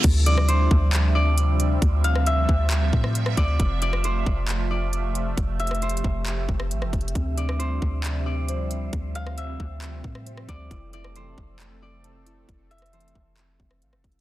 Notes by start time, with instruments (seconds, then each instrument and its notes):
Already playing: harp C5 E5
0.04 808-style bass D2, analog synth pad C3 F3 G3 D4 E5, synth texture G3 F4 C5 E5, kick, closed hi-hat, crash
0.26 harp D5, closed hi-hat
0.38 cross-stick
0.48 harp C5, closed hi-hat
0.71 808-style bass D2, kick
0.93 clap, closed hi-hat
1.15 harp D5
1.38 closed hi-hat
1.60 closed hi-hat
1.82 808-style bass D2, analog synth pad C4, synth texture D5, kick, closed hi-hat
2.04 harp F5, closed hi-hat
2.16 cross-stick
2.26 harp E5, closed hi-hat
2.49 808-style bass D2, kick
2.71 clap, closed hi-hat
2.93 808-style bass A2, kick
3.04 cross-stick
3.15 closed hi-hat
3.26 cross-stick
3.37 808-style bass D2, harp D5, kick, closed hi-hat
3.60 808-style bass F1, analog synth pad A3 F4, synth texture A3 E5, kick, closed hi-hat
3.82 harp D5, closed hi-hat
3.93 cross-stick
4.04 harp C5, closed hi-hat
4.26 808-style bass F1, kick
4.48 clap, closed hi-hat
4.71 harp D5
4.93 closed hi-hat
5.15 closed hi-hat
5.37 808-style bass F1, synth texture G4, analog synth pad G4, kick, closed hi-hat
5.60 harp E5, closed hi-hat
5.67 cross-stick, closed hi-hat
5.75 closed hi-hat
5.82 harp C5, closed hi-hat
5.89 closed hi-hat
5.97 closed hi-hat
6.04 808-style bass F1, kick
6.26 clap, closed hi-hat
6.49 808-style bass F1, kick
6.60 cross-stick
6.71 808-style bass A1, closed hi-hat
6.82 808-style bass F1, cross-stick
6.93 808-style bass F1, kick, closed hi-hat
7.01 closed hi-hat
7.08 closed hi-hat
7.15 808-style bass D2, synth texture F3 G3 C5, analog synth pad G3 D4, synth keys C4, kick, closed hi-hat
7.37 synth keys C4, harp D5, closed hi-hat
7.49 cross-stick
7.59 synth keys C4, harp C5, closed hi-hat
7.82 808-style bass D2, synth keys C4, kick
8.04 clap, closed hi-hat
8.26 synth keys C4, harp D5
8.48 synth keys C5, closed hi-hat
8.71 synth keys C4, closed hi-hat
8.93 808-style bass D2, synth keys C4, analog synth pad C4, kick, closed hi-hat
9.15 synth keys C4, harp F5, closed hi-hat
9.27 cross-stick
9.37 synth keys C4, harp E5, closed hi-hat
9.59 808-style bass D2, synth keys C4, kick
9.82 clap, closed hi-hat
10.04 808-style bass A2, synth keys C4, kick
10.15 cross-stick
10.26 synth keys C5, closed hi-hat
10.37 cross-stick
10.49 808-style bass D2, synth keys C4, harp D5, kick, closed hi-hat
10.71 808-style bass F1, analog synth pad C3 A3 C4 A4, synth texture A3, synth keys E4, kick, closed hi-hat
10.93 synth keys E4, harp D5, closed hi-hat
11.04 cross-stick
11.16 synth keys E3, harp C5, closed hi-hat
11.38 808-style bass F1, synth keys E5, kick
11.60 clap, closed hi-hat
11.82 synth keys C4, harp D5
12.04 synth keys A5, closed hi-hat
12.26 synth keys E4, closed hi-hat
12.48 808-style bass F1, synth keys E4, synth texture G4, kick, closed hi-hat
12.71 synth keys E4, harp E5, closed hi-hat
12.78 cross-stick, closed hi-hat
12.86 closed hi-hat
12.93 synth keys E3, harp C5, closed hi-hat
13.00 closed hi-hat
13.08 closed hi-hat
13.15 808-style bass F1, synth keys E5, kick
13.37 clap, closed hi-hat
13.60 808-style bass F1, synth keys C4, kick
13.71 cross-stick
13.82 808-style bass A1, synth keys F5, closed hi-hat
13.93 808-style bass F1, cross-stick
14.04 808-style bass F1, synth keys E4, kick, closed hi-hat
14.12 closed hi-hat